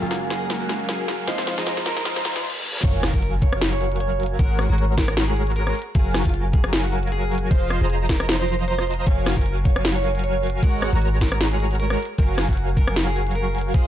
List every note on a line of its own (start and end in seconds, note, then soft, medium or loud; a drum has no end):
0.00 1.26 F#1 loud
0.00 1.25 F#3 medium
0.00 0.66 G#3 medium
0.00 2.41 G#3 medium
0.00 0.67 A#3 medium
0.00 1.24 A#3 medium
0.00 0.67 C#4 medium
0.00 0.18 F4 medium
0.00 1.26 F#4 medium
0.00 1.25 A#4 medium
0.00 0.68 F5 medium
0.00 1.25 F5 medium
0.00 1.26 G#5 medium
0.00 closed hi-hat soft
0.00 riser medium
0.06 closed hi-hat medium
0.11 snare medium
0.11 closed hi-hat medium
0.30 0.47 G#4 medium
0.30 snare medium
0.30 closed hi-hat medium
0.50 snare medium
0.50 closed hi-hat medium
0.61 0.76 F#4 loud
0.67 1.25 G#3 medium
0.67 1.25 A#3 medium
0.67 1.26 C#4 medium
0.67 1.27 F5 medium
0.67 snare medium
0.67 closed hi-hat medium
0.80 closed hi-hat soft
0.84 closed hi-hat medium
0.89 1.11 G#4 medium
0.89 snare medium
0.89 closed hi-hat medium
1.08 snare medium
1.08 closed hi-hat soft
1.12 closed hi-hat medium
1.15 closed hi-hat medium
1.26 1.56 F1 loud
1.26 2.43 D#3 medium
1.26 1.55 F3 loud
1.26 2.22 G#3 medium
1.26 2.23 C4 medium
1.26 2.43 C4 medium
1.26 2.23 D#4 medium
1.26 2.43 F4 medium
1.26 1.55 F4 medium
1.26 1.55 C5 medium
1.26 1.44 C5 loud
1.26 1.55 D#5 medium
1.26 1.55 F5 loud
1.26 snare medium
1.26 closed hi-hat medium
1.30 2.24 F4 medium
1.38 snare medium
1.47 snare loud
1.47 closed hi-hat medium
1.58 2.34 F1 loud
1.58 2.34 F3 loud
1.58 2.34 F4 medium
1.58 1.74 G#4 loud
1.58 2.34 C5 medium
1.58 2.34 D#5 medium
1.58 2.34 A#5 loud
1.58 snare medium
1.58 closed hi-hat soft
1.62 closed hi-hat medium
1.67 snare loud
1.67 closed hi-hat medium
1.77 snare medium
1.86 2.03 A#4 loud
1.86 snare loud
1.86 closed hi-hat medium
1.97 snare medium
2.05 snare loud
2.05 closed hi-hat medium
2.05 reverse cymbal medium
2.16 2.32 C5 loud
2.16 snare medium
2.25 snare loud
2.25 closed hi-hat medium
2.36 2.45 F1 loud
2.36 2.45 F3 medium
2.36 2.44 F4 medium
2.36 2.45 C5 medium
2.36 2.45 D#5 medium
2.36 2.45 C6 medium
2.36 snare medium
2.36 closed hi-hat soft
2.40 closed hi-hat medium
2.63 2.73 G#3 medium
2.63 2.74 C4 medium
2.63 2.74 D#4 medium
2.63 2.74 F4 medium
2.83 3.12 F#1 loud
2.83 3.11 F#3 medium
2.83 3.11 F#4 medium
2.83 3.11 A#4 medium
2.83 3.00 C#5 loud
2.83 3.11 F5 medium
2.83 3.11 G#5 loud
2.83 kick loud
2.83 closed hi-hat medium
2.83 crash loud
2.83 sub drop medium
3.03 cross-stick medium
3.03 snare medium
3.03 closed hi-hat medium
3.14 4.38 F#1 medium
3.14 4.37 F#3 medium
3.14 4.37 F#4 medium
3.14 3.30 A#4 medium
3.14 kick medium
3.14 closed hi-hat soft
3.18 closed hi-hat medium
3.22 closed hi-hat medium
3.42 3.59 C#5 loud
3.42 kick loud
3.42 closed hi-hat medium
3.53 cross-stick medium
3.61 snare loud
3.61 closed hi-hat medium
3.72 3.88 C#5 loud
3.81 closed hi-hat medium
3.92 closed hi-hat medium
3.96 closed hi-hat medium
4.00 4.22 C#5 medium
4.00 closed hi-hat medium
4.20 closed hi-hat medium
4.23 closed hi-hat medium
4.26 closed hi-hat medium
4.39 4.67 G#1 loud
4.39 4.67 G#3 loud
4.39 4.67 F#4 medium
4.39 4.67 A#4 medium
4.39 4.56 A#4 loud
4.39 4.67 C#5 medium
4.39 4.67 F#5 loud
4.39 kick loud
4.39 closed hi-hat medium
4.59 cross-stick medium
4.59 closed hi-hat medium
4.69 5.73 G#1 loud
4.69 5.75 G#3 loud
4.69 5.75 F#4 medium
4.69 4.86 F#4 medium
4.69 5.75 A#4 medium
4.69 5.75 C#5 medium
4.69 5.75 A#5 loud
4.69 closed hi-hat soft
4.74 closed hi-hat medium
4.78 closed hi-hat medium
4.98 5.14 A#4 medium
4.98 kick medium
4.98 snare medium
4.98 closed hi-hat medium
5.08 cross-stick medium
5.17 snare loud
5.17 closed hi-hat medium
5.28 5.44 G#4 loud
5.36 closed hi-hat medium
5.47 closed hi-hat soft
5.52 closed hi-hat medium
5.56 5.78 A#4 medium
5.56 closed hi-hat medium
5.67 cross-stick medium
5.75 closed hi-hat soft
5.79 closed hi-hat medium
5.82 closed hi-hat medium
5.95 6.23 F#1 loud
5.95 6.23 F#3 medium
5.95 6.23 F#4 medium
5.95 6.12 G#4 loud
5.95 6.23 A#4 medium
5.95 6.23 F5 medium
5.95 6.23 G#5 loud
5.95 kick loud
5.95 closed hi-hat medium
6.14 cross-stick medium
6.14 snare medium
6.14 closed hi-hat medium
6.25 7.49 F#1 loud
6.25 7.49 F#3 medium
6.25 6.41 F4 medium
6.25 7.49 F#4 medium
6.25 7.49 F5 medium
6.25 kick medium
6.25 closed hi-hat soft
6.29 closed hi-hat medium
6.34 closed hi-hat medium
6.53 6.70 G#4 medium
6.53 kick loud
6.53 closed hi-hat medium
6.64 cross-stick medium
6.73 snare loud
6.73 closed hi-hat medium
6.84 7.00 F#4 loud
6.92 closed hi-hat medium
7.03 closed hi-hat soft
7.07 closed hi-hat medium
7.12 7.34 G#4 medium
7.12 closed hi-hat medium
7.32 closed hi-hat soft
7.35 closed hi-hat medium
7.38 closed hi-hat medium
7.51 7.79 F1 medium
7.51 7.79 F3 loud
7.51 7.79 F4 medium
7.51 7.67 C5 loud
7.51 7.79 C5 medium
7.51 7.79 D#5 medium
7.51 7.79 F5 loud
7.51 kick loud
7.51 closed hi-hat medium
7.70 cross-stick medium
7.70 closed hi-hat medium
7.81 9.05 F1 loud
7.81 9.05 F3 loud
7.81 9.05 F4 medium
7.81 7.97 G#4 medium
7.81 9.05 C5 medium
7.81 9.05 D#5 medium
7.81 9.05 A#5 loud
7.81 closed hi-hat soft
7.85 closed hi-hat medium
7.90 closed hi-hat medium
8.09 8.26 A#4 loud
8.09 kick medium
8.09 snare medium
8.09 closed hi-hat medium
8.20 cross-stick medium
8.29 snare loud
8.29 closed hi-hat medium
8.40 8.56 C5 loud
8.48 closed hi-hat medium
8.59 closed hi-hat soft
8.63 closed hi-hat medium
8.68 8.90 C5 medium
8.68 closed hi-hat medium
8.78 cross-stick medium
8.87 closed hi-hat soft
8.91 closed hi-hat medium
8.94 closed hi-hat medium
9.07 9.35 F#1 loud
9.07 9.35 F#3 medium
9.07 9.35 F#4 medium
9.07 9.23 C#5 loud
9.07 9.34 F5 medium
9.07 kick loud
9.07 closed hi-hat medium
9.26 cross-stick medium
9.26 snare medium
9.26 closed hi-hat medium
9.37 10.64 F#1 loud
9.37 10.61 F#3 medium
9.37 10.61 F#4 medium
9.37 9.53 A#4 medium
9.37 kick medium
9.37 closed hi-hat soft
9.41 closed hi-hat medium
9.46 closed hi-hat medium
9.65 9.82 C#5 loud
9.65 kick loud
9.65 closed hi-hat medium
9.76 cross-stick medium
9.85 snare loud
9.85 closed hi-hat medium
9.96 10.11 C#5 loud
10.04 closed hi-hat medium
10.15 closed hi-hat soft
10.19 closed hi-hat medium
10.24 10.46 C#5 loud
10.24 closed hi-hat medium
10.43 closed hi-hat soft
10.47 closed hi-hat medium
10.50 closed hi-hat medium
10.63 10.91 G#1 loud
10.63 10.90 G#3 loud
10.63 10.90 F#4 medium
10.63 10.90 A#4 medium
10.63 10.79 A#4 loud
10.63 10.90 C#5 medium
10.63 10.90 F#5 loud
10.63 kick loud
10.63 closed hi-hat medium
10.82 cross-stick medium
10.82 closed hi-hat medium
10.93 11.96 G#1 loud
10.93 11.98 G#3 loud
10.93 11.98 F#4 medium
10.93 11.09 F#4 loud
10.93 11.98 A#4 medium
10.93 11.98 C#5 medium
10.93 11.98 A#5 loud
10.93 closed hi-hat soft
10.97 closed hi-hat medium
11.02 closed hi-hat medium
11.21 11.38 A#4 loud
11.21 kick medium
11.21 snare medium
11.21 closed hi-hat medium
11.32 cross-stick medium
11.41 snare loud
11.41 closed hi-hat medium
11.52 11.67 G#4 loud
11.60 closed hi-hat medium
11.71 closed hi-hat soft
11.75 closed hi-hat medium
11.79 12.01 A#4 medium
11.79 closed hi-hat medium
11.90 cross-stick medium
11.99 closed hi-hat soft
12.03 closed hi-hat medium
12.05 closed hi-hat medium
12.18 12.47 F#1 loud
12.18 12.46 F#3 medium
12.18 12.46 F#4 medium
12.18 12.46 A#4 medium
12.18 12.35 A#4 loud
12.18 12.46 F5 medium
12.18 12.46 G#5 loud
12.18 kick loud
12.18 closed hi-hat medium
12.38 cross-stick medium
12.38 snare medium
12.38 closed hi-hat medium
12.49 13.76 F#1 loud
12.49 13.72 F#3 medium
12.49 13.72 F#4 medium
12.49 12.65 F#4 loud
12.49 13.72 A#4 medium
12.49 13.72 F5 medium
12.49 13.72 G#5 medium
12.49 kick medium
12.49 closed hi-hat soft
12.53 closed hi-hat medium
12.57 closed hi-hat medium
12.77 12.93 A#4 medium
12.77 kick loud
12.77 closed hi-hat medium
12.88 cross-stick medium
12.96 snare loud
12.96 closed hi-hat medium
13.07 13.23 G#4 loud
13.16 closed hi-hat medium
13.27 closed hi-hat medium
13.31 closed hi-hat medium
13.35 13.57 A#4 loud
13.35 closed hi-hat medium
13.55 closed hi-hat medium
13.58 closed hi-hat medium
13.61 closed hi-hat medium
13.74 13.87 F1 medium
13.74 13.87 F3 loud
13.74 13.87 F4 medium
13.74 13.87 G#4 loud
13.74 13.87 C5 medium
13.74 13.87 D#5 medium
13.74 13.87 F5 loud
13.74 kick loud
13.74 closed hi-hat medium